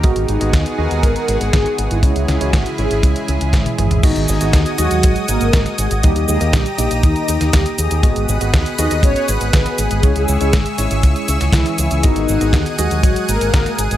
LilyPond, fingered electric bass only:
\new Staff \with { instrumentName = "Fingered electric bass" } { \clef bass \time 4/4 \key gis \minor \tempo 4 = 120 gis,,16 gis,,16 gis,,16 gis,,16 dis,16 r16 dis,16 dis,16 gis,,16 r16 gis,,16 gis,,16 gis,,16 r16 gis,,16 gis,,16 | cis,16 cis,16 cis,16 cis,16 gis,,16 r16 gis,,16 gis,,16 cis,16 r16 cis,16 cis,16 gis,,16 r16 gis,,16 gis,,16 | gis,,16 gis,,16 gis,,16 gis,,16 dis,16 r16 dis,16 dis,16 gis,,16 r16 gis,,16 gis,,16 gis,,16 r16 gis,,16 gis,,16 | dis,16 dis,16 dis,16 dis,16 ais,,16 r16 ais,,16 ais,,16 dis,16 r16 dis,16 dis,16 dis,16 r16 dis,16 dis,16 |
gis,,16 gis,,16 gis,,16 gis,,16 dis,16 r16 dis,16 dis,16 gis,,16 r16 gis,,16 gis,,16 gis,,16 r16 gis,,16 gis,,16 | cis,16 cis,16 cis,16 cis,16 gis,,16 r16 gis,,16 gis,,16 cis,16 r16 cis,16 cis,16 cis,16 r16 cis,16 cis,16 | gis,,16 gis,,16 gis,,16 gis,,16 dis,16 r16 dis,16 dis,16 gis,,16 r16 gis,,16 gis,,16 gis,,16 r16 gis,,16 gis,,16 | }